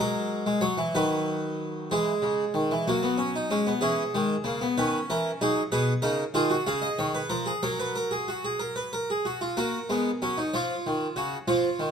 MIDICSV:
0, 0, Header, 1, 2, 480
1, 0, Start_track
1, 0, Key_signature, 5, "major"
1, 0, Tempo, 638978
1, 7, Time_signature, 6, 3, 24, 8
1, 2407, Tempo, 629591
1, 4329, Key_signature, 6, "major"
1, 5287, Tempo, 641026
1, 8977, End_track
2, 0, Start_track
2, 0, Title_t, "Harpsichord"
2, 0, Program_c, 0, 6
2, 0, Note_on_c, 0, 54, 78
2, 0, Note_on_c, 0, 56, 68
2, 0, Note_on_c, 0, 70, 87
2, 340, Note_off_c, 0, 56, 0
2, 345, Note_off_c, 0, 54, 0
2, 349, Note_on_c, 0, 56, 74
2, 459, Note_on_c, 0, 54, 76
2, 460, Note_off_c, 0, 70, 0
2, 460, Note_on_c, 0, 73, 95
2, 469, Note_off_c, 0, 56, 0
2, 583, Note_on_c, 0, 52, 79
2, 584, Note_off_c, 0, 54, 0
2, 614, Note_off_c, 0, 73, 0
2, 706, Note_off_c, 0, 52, 0
2, 711, Note_on_c, 0, 54, 69
2, 713, Note_on_c, 0, 51, 74
2, 714, Note_on_c, 0, 71, 82
2, 1420, Note_off_c, 0, 54, 0
2, 1421, Note_off_c, 0, 51, 0
2, 1422, Note_off_c, 0, 71, 0
2, 1437, Note_on_c, 0, 68, 59
2, 1438, Note_on_c, 0, 52, 66
2, 1440, Note_on_c, 0, 56, 56
2, 1591, Note_off_c, 0, 52, 0
2, 1670, Note_on_c, 0, 49, 62
2, 1825, Note_off_c, 0, 49, 0
2, 1909, Note_on_c, 0, 51, 66
2, 2036, Note_off_c, 0, 51, 0
2, 2039, Note_on_c, 0, 52, 70
2, 2144, Note_off_c, 0, 68, 0
2, 2145, Note_off_c, 0, 56, 0
2, 2160, Note_off_c, 0, 52, 0
2, 2160, Note_on_c, 0, 66, 58
2, 2161, Note_on_c, 0, 54, 68
2, 2161, Note_on_c, 0, 58, 54
2, 2275, Note_on_c, 0, 59, 56
2, 2281, Note_off_c, 0, 58, 0
2, 2386, Note_on_c, 0, 61, 61
2, 2397, Note_off_c, 0, 59, 0
2, 2513, Note_off_c, 0, 61, 0
2, 2523, Note_on_c, 0, 63, 58
2, 2630, Note_off_c, 0, 54, 0
2, 2636, Note_on_c, 0, 61, 61
2, 2639, Note_on_c, 0, 56, 74
2, 2643, Note_off_c, 0, 63, 0
2, 2759, Note_off_c, 0, 61, 0
2, 2759, Note_on_c, 0, 59, 55
2, 2791, Note_off_c, 0, 56, 0
2, 2864, Note_off_c, 0, 66, 0
2, 2868, Note_on_c, 0, 68, 62
2, 2873, Note_on_c, 0, 52, 62
2, 2875, Note_on_c, 0, 61, 75
2, 2881, Note_off_c, 0, 59, 0
2, 3027, Note_off_c, 0, 52, 0
2, 3028, Note_off_c, 0, 61, 0
2, 3124, Note_on_c, 0, 56, 68
2, 3126, Note_on_c, 0, 51, 66
2, 3274, Note_off_c, 0, 56, 0
2, 3275, Note_off_c, 0, 51, 0
2, 3350, Note_on_c, 0, 49, 66
2, 3352, Note_on_c, 0, 58, 73
2, 3476, Note_off_c, 0, 58, 0
2, 3482, Note_on_c, 0, 59, 75
2, 3504, Note_off_c, 0, 49, 0
2, 3575, Note_off_c, 0, 68, 0
2, 3601, Note_off_c, 0, 59, 0
2, 3605, Note_on_c, 0, 71, 67
2, 3607, Note_on_c, 0, 51, 63
2, 3607, Note_on_c, 0, 61, 71
2, 3755, Note_off_c, 0, 71, 0
2, 3756, Note_off_c, 0, 51, 0
2, 3851, Note_on_c, 0, 52, 67
2, 3853, Note_on_c, 0, 70, 65
2, 3999, Note_off_c, 0, 52, 0
2, 4001, Note_off_c, 0, 70, 0
2, 4074, Note_off_c, 0, 61, 0
2, 4091, Note_on_c, 0, 63, 81
2, 4092, Note_on_c, 0, 68, 74
2, 4095, Note_on_c, 0, 54, 70
2, 4239, Note_off_c, 0, 63, 0
2, 4240, Note_off_c, 0, 68, 0
2, 4242, Note_off_c, 0, 54, 0
2, 4325, Note_on_c, 0, 68, 88
2, 4325, Note_on_c, 0, 71, 75
2, 4326, Note_on_c, 0, 47, 66
2, 4474, Note_off_c, 0, 71, 0
2, 4475, Note_off_c, 0, 68, 0
2, 4476, Note_off_c, 0, 47, 0
2, 4555, Note_on_c, 0, 70, 69
2, 4559, Note_on_c, 0, 49, 71
2, 4561, Note_on_c, 0, 63, 79
2, 4708, Note_off_c, 0, 70, 0
2, 4710, Note_off_c, 0, 49, 0
2, 4712, Note_off_c, 0, 63, 0
2, 4799, Note_on_c, 0, 51, 74
2, 4802, Note_on_c, 0, 65, 89
2, 4805, Note_on_c, 0, 68, 76
2, 4919, Note_on_c, 0, 66, 76
2, 4921, Note_off_c, 0, 65, 0
2, 4950, Note_off_c, 0, 51, 0
2, 4954, Note_off_c, 0, 68, 0
2, 5039, Note_off_c, 0, 66, 0
2, 5046, Note_on_c, 0, 77, 61
2, 5047, Note_on_c, 0, 49, 69
2, 5049, Note_on_c, 0, 68, 79
2, 5162, Note_on_c, 0, 75, 60
2, 5163, Note_off_c, 0, 77, 0
2, 5196, Note_off_c, 0, 49, 0
2, 5281, Note_off_c, 0, 75, 0
2, 5291, Note_on_c, 0, 51, 69
2, 5291, Note_on_c, 0, 73, 63
2, 5404, Note_off_c, 0, 73, 0
2, 5410, Note_on_c, 0, 71, 62
2, 5437, Note_off_c, 0, 51, 0
2, 5511, Note_off_c, 0, 68, 0
2, 5522, Note_on_c, 0, 53, 62
2, 5522, Note_on_c, 0, 70, 71
2, 5523, Note_off_c, 0, 71, 0
2, 5644, Note_on_c, 0, 68, 55
2, 5673, Note_off_c, 0, 53, 0
2, 5674, Note_off_c, 0, 70, 0
2, 5762, Note_off_c, 0, 68, 0
2, 5771, Note_on_c, 0, 70, 55
2, 5771, Note_on_c, 0, 73, 63
2, 5772, Note_on_c, 0, 54, 58
2, 5887, Note_off_c, 0, 73, 0
2, 5896, Note_on_c, 0, 71, 58
2, 6008, Note_off_c, 0, 70, 0
2, 6009, Note_off_c, 0, 71, 0
2, 6017, Note_on_c, 0, 70, 60
2, 6130, Note_off_c, 0, 70, 0
2, 6133, Note_on_c, 0, 68, 54
2, 6248, Note_off_c, 0, 68, 0
2, 6261, Note_on_c, 0, 66, 54
2, 6373, Note_off_c, 0, 66, 0
2, 6383, Note_on_c, 0, 68, 55
2, 6494, Note_off_c, 0, 68, 0
2, 6495, Note_on_c, 0, 70, 54
2, 6611, Note_off_c, 0, 70, 0
2, 6618, Note_on_c, 0, 71, 50
2, 6734, Note_off_c, 0, 71, 0
2, 6745, Note_on_c, 0, 70, 55
2, 6859, Note_off_c, 0, 70, 0
2, 6875, Note_on_c, 0, 68, 50
2, 6953, Note_off_c, 0, 54, 0
2, 6985, Note_off_c, 0, 68, 0
2, 6988, Note_on_c, 0, 66, 49
2, 7102, Note_off_c, 0, 66, 0
2, 7107, Note_on_c, 0, 65, 46
2, 7222, Note_off_c, 0, 65, 0
2, 7225, Note_on_c, 0, 70, 58
2, 7226, Note_on_c, 0, 58, 60
2, 7229, Note_on_c, 0, 66, 75
2, 7374, Note_off_c, 0, 58, 0
2, 7375, Note_off_c, 0, 66, 0
2, 7468, Note_on_c, 0, 56, 57
2, 7471, Note_on_c, 0, 59, 68
2, 7615, Note_off_c, 0, 56, 0
2, 7616, Note_off_c, 0, 59, 0
2, 7712, Note_on_c, 0, 54, 56
2, 7714, Note_on_c, 0, 61, 72
2, 7824, Note_off_c, 0, 61, 0
2, 7828, Note_on_c, 0, 63, 63
2, 7857, Note_off_c, 0, 54, 0
2, 7920, Note_off_c, 0, 70, 0
2, 7940, Note_off_c, 0, 63, 0
2, 7948, Note_on_c, 0, 73, 50
2, 7952, Note_on_c, 0, 53, 53
2, 7953, Note_on_c, 0, 65, 65
2, 8097, Note_off_c, 0, 53, 0
2, 8195, Note_on_c, 0, 51, 59
2, 8337, Note_off_c, 0, 51, 0
2, 8408, Note_off_c, 0, 65, 0
2, 8417, Note_on_c, 0, 49, 58
2, 8419, Note_on_c, 0, 66, 69
2, 8563, Note_off_c, 0, 49, 0
2, 8565, Note_off_c, 0, 66, 0
2, 8635, Note_off_c, 0, 73, 0
2, 8653, Note_on_c, 0, 53, 64
2, 8653, Note_on_c, 0, 65, 76
2, 8653, Note_on_c, 0, 73, 55
2, 8800, Note_off_c, 0, 53, 0
2, 8891, Note_on_c, 0, 51, 60
2, 8977, Note_off_c, 0, 51, 0
2, 8977, Note_off_c, 0, 65, 0
2, 8977, Note_off_c, 0, 73, 0
2, 8977, End_track
0, 0, End_of_file